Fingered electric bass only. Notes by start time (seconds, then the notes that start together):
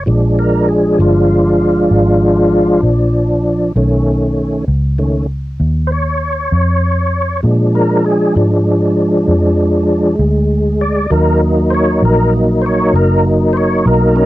0.07 A#1
0.99 G1
1.91 G#1
2.83 A#1
3.76 B1
4.68 C#2
5.60 D#2
6.52 F2
7.44 A#2
8.36 G#2
9.28 F2
10.19 D2
11.11 D#2
12.02 A#1
12.94 F#1
13.86 B1